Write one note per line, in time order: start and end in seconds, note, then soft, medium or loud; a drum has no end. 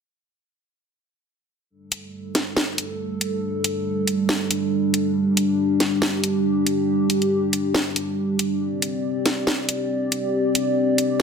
1.70 8.57 G3 medium
1.70 8.57 D4 medium
1.70 5.12 A4 medium
1.92 closed hi-hat medium
2.35 snare medium
2.35 closed hi-hat medium
2.57 snare loud
2.78 closed hi-hat medium
3.21 closed hi-hat medium
3.64 closed hi-hat medium
4.07 closed hi-hat medium
4.29 snare loud
4.51 closed hi-hat medium
4.94 closed hi-hat medium
5.16 8.57 G4 medium
5.37 closed hi-hat medium
5.80 snare medium
5.80 closed hi-hat medium
6.02 snare loud
6.24 closed hi-hat medium
6.67 closed hi-hat medium
7.10 closed hi-hat medium
7.22 closed hi-hat soft
7.53 closed hi-hat medium
7.75 snare loud
7.96 closed hi-hat medium
8.39 closed hi-hat medium
8.61 11.22 C4 medium
8.61 11.22 G4 medium
8.61 11.22 D5 medium
8.82 closed hi-hat medium
9.26 snare medium
9.26 closed hi-hat medium
9.47 snare loud
9.69 closed hi-hat medium
10.12 closed hi-hat medium
10.55 closed hi-hat medium
10.98 closed hi-hat medium